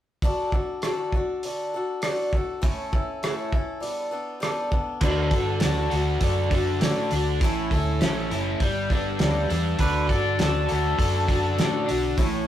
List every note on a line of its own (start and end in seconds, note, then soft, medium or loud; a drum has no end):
0.22 0.53 D3 medium
0.22 0.53 D4 medium
0.22 0.52 F#4 medium
0.22 0.50 A4 medium
0.22 kick medium
0.22 open hi-hat soft
0.52 0.83 D4 soft
0.52 0.83 F#4 soft
0.52 0.82 A4 soft
0.52 kick medium
0.82 1.13 D3 medium
0.82 1.14 D4 medium
0.82 1.14 F#4 medium
0.82 1.13 A4 medium
0.82 cross-stick medium
0.82 open hi-hat soft
1.12 1.45 F#4 soft
1.12 1.44 A4 medium
1.12 kick medium
1.17 1.44 D4 soft
1.43 1.74 D3 soft
1.43 1.74 D4 soft
1.43 1.75 F#4 medium
1.43 open hi-hat soft
1.48 1.73 A4 medium
1.74 2.02 D4 soft
1.74 2.02 F#4 soft
1.74 2.03 A4 medium
2.02 2.33 D3 medium
2.02 2.33 D4 medium
2.02 2.33 F#4 medium
2.02 2.33 A4 medium
2.02 cross-stick medium
2.02 open hi-hat soft
2.33 2.63 F#4 soft
2.33 2.63 A4 medium
2.33 kick medium
2.37 2.63 D4 soft
2.62 2.93 A2 medium
2.62 2.94 A3 medium
2.62 2.94 C#4 medium
2.62 2.93 E4 medium
2.62 2.91 A4 medium
2.62 kick medium
2.62 open hi-hat soft
2.92 3.22 C#4 soft
2.92 3.23 E4 soft
2.92 3.23 A4 medium
2.92 kick medium
3.23 3.53 A2 medium
3.23 3.54 A3 medium
3.23 3.54 C#4 medium
3.23 3.54 E4 medium
3.23 3.52 A4 medium
3.23 cross-stick medium
3.23 open hi-hat soft
3.52 3.82 C#4 soft
3.52 3.82 E4 soft
3.52 3.82 A4 soft
3.52 kick medium
3.80 4.12 G3 medium
3.80 4.11 B3 medium
3.80 4.12 D4 soft
3.80 4.10 A4 medium
3.80 open hi-hat soft
4.11 4.41 B3 medium
4.11 4.41 D4 soft
4.11 4.42 A4 soft
4.40 4.72 G3 medium
4.40 4.71 B3 medium
4.40 4.72 D4 medium
4.40 4.70 A4 medium
4.40 cross-stick medium
4.40 open hi-hat soft
4.71 5.03 B3 soft
4.71 5.02 D4 soft
4.71 5.02 A4 soft
4.71 kick medium
5.01 5.31 D2 medium
5.01 5.33 D3 medium
5.01 5.33 D4 medium
5.01 5.34 F#4 medium
5.01 kick medium
5.01 crash medium
5.05 5.33 A4 medium
5.31 5.61 G2 medium
5.31 5.64 A4 medium
5.31 kick medium
5.31 open hi-hat soft
5.36 5.63 D4 soft
5.36 5.64 F#4 soft
5.60 5.92 D2 medium
5.60 snare medium
5.60 open hi-hat medium
5.64 5.94 D3 medium
5.64 5.93 D4 medium
5.64 5.94 F#4 medium
5.64 5.93 A4 medium
5.90 6.21 D2 medium
5.90 7.41 F#4 medium
5.90 open hi-hat soft
5.94 6.22 D4 soft
5.94 6.23 F#4 soft
5.94 6.23 A4 soft
6.21 6.79 F#2 medium
6.21 6.53 D3 soft
6.21 6.53 D4 medium
6.21 6.53 F#4 medium
6.21 7.71 A4 medium
6.21 kick medium
6.21 open hi-hat medium
6.25 6.51 A4 medium
6.50 7.11 D4 medium
6.50 6.82 A4 medium
6.50 kick medium
6.50 open hi-hat soft
6.55 6.83 D4 soft
6.55 6.83 F#4 medium
6.81 7.10 A2 medium
6.81 7.12 D3 medium
6.81 7.13 D4 medium
6.81 7.13 F#4 medium
6.81 7.12 A4 medium
6.81 snare loud
6.81 open hi-hat medium
7.11 7.41 D2 medium
7.11 7.43 F#4 medium
7.11 7.42 A4 medium
7.11 open hi-hat soft
7.15 7.44 D4 soft
7.41 7.72 A2 medium
7.41 7.73 A3 medium
7.41 7.73 C#4 medium
7.41 7.73 E4 medium
7.41 kick loud
7.41 open hi-hat medium
7.45 7.73 A4 medium
7.71 8.00 D2 medium
7.71 8.02 E4 soft
7.71 8.03 A4 medium
7.71 kick medium
7.71 open hi-hat soft
7.77 8.01 C#4 soft
8.01 8.30 A1 medium
8.01 8.31 A2 medium
8.01 8.32 A3 medium
8.01 8.32 C#4 medium
8.01 8.32 E4 medium
8.01 8.31 A4 medium
8.01 snare loud
8.01 open hi-hat medium
8.31 8.59 F#1 medium
8.31 8.63 C#4 soft
8.31 8.62 E4 soft
8.31 8.62 A4 medium
8.31 open hi-hat soft
8.60 9.18 G1 medium
8.60 8.91 G3 medium
8.60 8.92 D4 medium
8.60 kick medium
8.60 open hi-hat medium
8.65 8.92 B3 medium
8.65 8.91 A4 medium
8.90 9.21 B3 soft
8.90 9.21 A4 medium
8.90 kick medium
8.90 open hi-hat soft
8.95 9.21 D4 soft
9.19 9.49 D2 medium
9.19 9.51 G3 medium
9.19 9.51 B3 medium
9.19 9.51 D4 medium
9.19 snare loud
9.19 open hi-hat medium
9.24 9.50 A4 medium
9.49 9.79 E2 medium
9.49 9.81 B3 soft
9.49 9.80 D4 medium
9.49 9.80 A4 medium
9.49 open hi-hat soft
9.54 9.80 D4 soft
9.79 10.08 D2 medium
9.79 10.10 D3 medium
9.79 10.10 D4 medium
9.79 10.11 F#4 medium
9.79 10.10 A4 medium
9.79 10.09 B4 loud
9.79 kick medium
9.79 open hi-hat medium
10.09 10.38 G2 medium
10.09 10.40 A4 medium
10.09 10.39 D5 medium
10.09 kick medium
10.09 open hi-hat soft
10.13 10.41 D4 soft
10.13 10.41 F#4 soft
10.39 10.68 D2 medium
10.39 10.70 D3 medium
10.39 10.71 D4 medium
10.39 10.71 F#4 medium
10.39 10.71 A4 medium
10.39 snare loud
10.39 open hi-hat medium
10.69 10.97 D2 medium
10.69 12.18 F#4 medium
10.69 11.00 A4 medium
10.69 open hi-hat soft
10.73 11.01 D4 soft
10.73 11.01 F#4 soft
10.98 11.56 F#2 medium
10.98 11.29 D3 medium
10.98 11.30 D4 medium
10.98 12.46 A4 medium
10.98 kick medium
10.98 open hi-hat medium
11.03 11.31 F#4 medium
11.03 11.29 A4 medium
11.28 11.85 D4 medium
11.28 11.58 F#4 medium
11.28 11.59 A4 medium
11.28 kick medium
11.28 open hi-hat medium
11.34 11.59 D4 soft
11.58 11.87 A2 medium
11.58 11.88 D3 medium
11.58 11.89 D4 medium
11.58 11.89 F#4 medium
11.58 11.87 A4 medium
11.58 snare loud
11.58 open hi-hat medium
11.86 12.17 B1 medium
11.86 12.17 D4 medium
11.86 12.19 F#4 medium
11.86 12.18 A4 medium
11.86 open hi-hat medium
11.91 12.19 D4 soft
12.17 12.47 A1 medium
12.17 12.47 A2 medium
12.17 12.47 A3 medium
12.17 12.47 C#4 medium
12.17 12.47 E4 medium
12.17 12.46 A4 loud
12.17 kick loud
12.17 open hi-hat medium